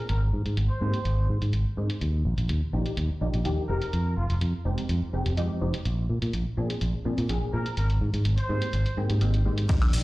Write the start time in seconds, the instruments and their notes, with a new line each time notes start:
0.09 fingered electric bass G#1, trumpet section A#4, closed hi-hat
0.33 fingered electric bass G#2
0.46 fingered electric bass G#2, closed hi-hat
0.57 fingered electric bass G#1, closed hi-hat
0.70 trumpet section C5
0.81 fingered electric bass G#2, analog polysynth G#3 A#3 C4 D#4 G4
0.94 closed hi-hat
1.05 fingered electric bass G#1, closed hi-hat
1.29 fingered electric bass G#2
1.42 fingered electric bass G#2, closed hi-hat
1.53 fingered electric bass G#1, closed hi-hat
1.77 fingered electric bass G#2, analog polysynth G#3 A#3 C4 D#4 G#4
1.90 closed hi-hat
2.01 fingered electric bass D#2, closed hi-hat
2.25 fingered electric bass A#1
2.38 fingered electric bass A#1, closed hi-hat
2.49 fingered electric bass D#2, closed hi-hat
2.73 fingered electric bass A#1, analog polysynth F3 A#3 D4 D#4 G4
2.86 closed hi-hat
2.97 fingered electric bass D#2, closed hi-hat
3.10 muted fingered electric bass stroke
3.21 fingered electric bass A#1, analog polysynth F3 A#3 D4 D#4 G4
3.34 fingered electric bass A#1, closed hi-hat
3.45 fingered electric bass D#2, analog polysynth F3 A#3 D4 D#4 G4, closed hi-hat
3.69 fingered electric bass F1, analog polysynth F3 G#3 C4 D#4 G4, trumpet section A#4
3.82 closed hi-hat
3.93 fingered electric bass F2, closed hi-hat
4.17 fingered electric bass F1, trumpet section F4
4.30 fingered electric bass F1, trumpet section F4, closed hi-hat
4.41 fingered electric bass F2, closed hi-hat
4.65 fingered electric bass F1, analog polysynth F3 G#3 C4 D#4 G4
4.78 closed hi-hat
4.89 fingered electric bass F2, closed hi-hat
5.02 muted fingered electric bass stroke
5.13 fingered electric bass F1, analog polysynth F3 G#3 C4 D#4 G4
5.26 fingered electric bass F1, closed hi-hat
5.37 fingered electric bass F2, analog polysynth F3 G#3 C4 D#4 G4, closed hi-hat
5.61 fingered electric bass F1, analog polysynth F3 G#3 C4 D#4 G4
5.74 closed hi-hat
5.85 fingered electric bass A#1, closed hi-hat
6.09 fingered electric bass A#2
6.22 fingered electric bass A#2, closed hi-hat
6.33 fingered electric bass A#1, closed hi-hat
6.57 fingered electric bass A#2, analog polysynth F3 A#3 C4 D4 G#4
6.70 closed hi-hat
6.81 fingered electric bass A#1, closed hi-hat
6.94 muted fingered electric bass stroke
7.05 fingered electric bass A#2, analog polysynth F3 A#3 C4 D4 G#4
7.18 fingered electric bass A#2, closed hi-hat
7.29 fingered electric bass A#1, analog polysynth F3 A#3 C4 D4 G#4, closed hi-hat
7.53 fingered electric bass A#2, analog polysynth F3 A#3 C4 D4 G#4, trumpet section A#4
7.66 closed hi-hat
7.77 fingered electric bass G#1, trumpet section A#4, closed hi-hat
7.90 closed hi-hat
8.01 fingered electric bass G#2
8.14 fingered electric bass G#2, closed hi-hat
8.25 fingered electric bass G#1, closed hi-hat
8.38 trumpet section C5, closed hi-hat
8.49 fingered electric bass G#2, analog polysynth G#3 A#3 C4 D#4 G4
8.62 closed hi-hat
8.73 fingered electric bass G#1, closed hi-hat
8.86 muted fingered electric bass stroke, closed hi-hat
8.97 fingered electric bass G#2, analog polysynth G#3 A#3 C4 D#4 G4
9.10 fingered electric bass G#2, closed hi-hat
9.21 fingered electric bass G#1, analog polysynth G#3 A#3 C4 D#4 G4, closed hi-hat
9.34 closed hi-hat
9.45 fingered electric bass G#2, analog polysynth G#3 A#3 C4 D#4 G4
9.58 closed hi-hat
9.68 fingered electric bass D#2, analog polysynth F3 A#3 D4 D#4 G4, kick, closed hi-hat, crash, shaker
9.82 closed hi-hat, high woodblock
9.93 fingered electric bass A#1, open hi-hat, shaker